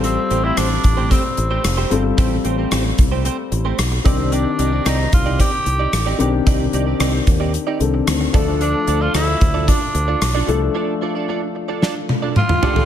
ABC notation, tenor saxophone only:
X:1
M:4/4
L:1/16
Q:1/4=112
K:Ddor
V:1 name="Tenor saxophone"
C3 E D4 C6 z2 | z12 z2 C2 | D4 _E2 F2 G6 z2 | z16 |
D3 F E4 D6 z2 | z12 F4 |]